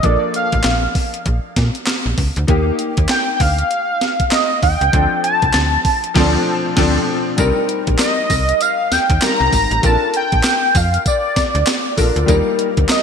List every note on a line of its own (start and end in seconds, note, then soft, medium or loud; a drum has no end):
0.02 0.17 A#1 loud
0.02 2.44 F3 medium
0.02 2.44 A#3 medium
0.02 2.45 D4 medium
0.02 2.45 A4 medium
0.02 0.35 D5 medium
0.02 kick loud
0.02 closed hi-hat medium
0.34 0.92 F5 medium
0.34 closed hi-hat medium
0.52 0.62 A1 medium
0.52 kick medium
0.52 closed hi-hat soft
0.63 0.88 A#1 loud
0.63 snare loud
0.63 clap medium
0.63 closed hi-hat medium
0.95 kick loud
0.95 open hi-hat medium
1.14 closed hi-hat medium
1.26 1.40 A#1 loud
1.26 kick medium
1.26 closed hi-hat medium
1.56 1.71 A#2 loud
1.56 kick medium
1.56 snare medium
1.56 closed hi-hat medium
1.75 closed hi-hat medium
1.86 snare loud
1.86 clap medium
1.86 closed hi-hat medium
2.06 2.15 A#1 medium
2.18 2.32 C#2 medium
2.18 kick medium
2.18 open hi-hat medium
2.36 2.46 D2 loud
2.36 closed hi-hat medium
2.47 2.72 D#2 loud
2.47 4.89 A#3 medium
2.47 4.89 D#4 medium
2.47 4.90 G4 medium
2.47 kick loud
2.47 closed hi-hat medium
2.79 closed hi-hat medium
2.97 3.07 D#2 medium
2.97 kick medium
2.97 closed hi-hat soft
3.09 3.33 G5 loud
3.09 snare loud
3.09 clap medium
3.09 closed hi-hat medium
3.36 3.43 G5 medium
3.40 3.63 D2 loud
3.40 4.32 F5 medium
3.40 kick medium
3.40 open hi-hat medium
3.58 closed hi-hat medium
3.71 closed hi-hat medium
4.01 snare medium
4.01 closed hi-hat medium
4.20 kick medium
4.20 closed hi-hat medium
4.31 4.61 D#5 loud
4.31 snare loud
4.31 clap medium
4.31 closed hi-hat medium
4.63 4.77 D#2 medium
4.63 5.20 G5 loud
4.63 kick medium
4.63 open hi-hat medium
4.81 4.90 C#2 medium
4.81 closed hi-hat soft
4.92 5.07 D2 loud
4.92 6.13 F3 medium
4.92 6.13 C4 medium
4.92 6.13 D4 medium
4.92 6.14 A4 medium
4.92 kick loud
4.92 closed hi-hat medium
5.24 6.12 A5 loud
5.24 closed hi-hat medium
5.42 5.52 C2 medium
5.42 kick medium
5.42 closed hi-hat soft
5.53 5.78 D2 loud
5.53 snare loud
5.53 clap medium
5.53 closed hi-hat medium
5.85 kick loud
5.85 open hi-hat medium
6.04 closed hi-hat medium
6.14 6.38 D2 loud
6.14 6.37 F3 loud
6.14 6.37 C4 loud
6.14 6.38 D4 loud
6.14 6.38 A4 medium
6.14 kick loud
6.14 snare loud
6.14 crash medium
6.76 6.99 D2 loud
6.76 6.98 F3 loud
6.76 6.99 C4 loud
6.76 6.99 D4 medium
6.76 7.00 A4 medium
6.76 kick loud
6.76 snare loud
6.76 crash medium
7.37 7.52 C2 loud
7.37 9.17 G3 medium
7.37 9.18 C4 medium
7.37 9.18 D#4 medium
7.37 9.19 A#4 medium
7.37 kick loud
7.37 closed hi-hat medium
7.37 tambourine medium
7.69 closed hi-hat medium
7.87 7.97 A#1 medium
7.87 kick medium
7.87 closed hi-hat soft
7.99 8.63 D#5 loud
7.99 snare loud
7.99 clap medium
7.99 closed hi-hat medium
7.99 tambourine medium
8.30 8.53 C2 loud
8.30 kick loud
8.30 open hi-hat medium
8.30 tambourine medium
8.49 closed hi-hat medium
8.61 8.94 F5 loud
8.61 closed hi-hat medium
8.61 tambourine medium
8.92 8.99 D#2 soft
8.92 9.22 G5 loud
8.92 snare medium
8.92 closed hi-hat medium
8.92 tambourine medium
9.10 9.19 D#2 loud
9.10 kick medium
9.10 closed hi-hat medium
9.21 9.83 G3 soft
9.21 9.81 C4 soft
9.21 9.83 D#4 soft
9.21 9.83 A#4 medium
9.21 9.87 A#5 loud
9.21 snare loud
9.21 clap medium
9.21 closed hi-hat medium
9.21 tambourine loud
9.41 9.50 C2 medium
9.53 9.67 G#1 medium
9.53 kick medium
9.53 open hi-hat medium
9.53 tambourine medium
9.71 9.80 A1 medium
9.71 closed hi-hat medium
9.82 9.97 A#1 loud
9.82 9.91 C4 soft
9.82 11.94 F4 medium
9.82 11.93 A4 medium
9.82 11.94 A#4 medium
9.82 10.15 A5 loud
9.82 kick loud
9.82 closed hi-hat medium
9.82 tambourine medium
9.89 11.96 D4 medium
10.14 10.78 G5 loud
10.14 closed hi-hat medium
10.32 10.42 A#1 medium
10.32 kick medium
10.32 closed hi-hat soft
10.43 snare loud
10.43 clap medium
10.43 closed hi-hat medium
10.43 tambourine medium
10.75 10.98 F2 loud
10.75 11.06 F5 medium
10.75 kick medium
10.75 open hi-hat medium
10.75 tambourine medium
10.94 closed hi-hat medium
11.06 11.94 D5 medium
11.06 kick medium
11.06 closed hi-hat medium
11.06 tambourine medium
11.36 11.44 D2 medium
11.36 kick medium
11.36 snare medium
11.36 closed hi-hat medium
11.36 tambourine medium
11.55 11.64 D2 loud
11.55 closed hi-hat medium
11.67 snare loud
11.67 clap medium
11.67 closed hi-hat medium
11.67 tambourine loud
11.97 12.12 A#1 medium
11.97 12.28 D4 medium
11.97 12.28 F4 medium
11.97 12.28 A4 medium
11.97 12.27 A#4 medium
11.97 kick medium
11.97 open hi-hat medium
11.97 tambourine medium
12.16 12.25 D2 loud
12.16 closed hi-hat medium
12.26 12.42 D#2 loud
12.26 13.03 G3 medium
12.26 13.03 A#3 medium
12.26 13.03 D#4 medium
12.26 13.03 A#4 medium
12.26 kick loud
12.26 closed hi-hat medium
12.26 tambourine medium
12.59 closed hi-hat medium
12.77 12.87 D2 medium
12.77 kick medium
12.77 closed hi-hat soft
12.89 13.03 D#5 loud
12.89 snare loud
12.89 clap medium
12.89 closed hi-hat medium
12.89 tambourine medium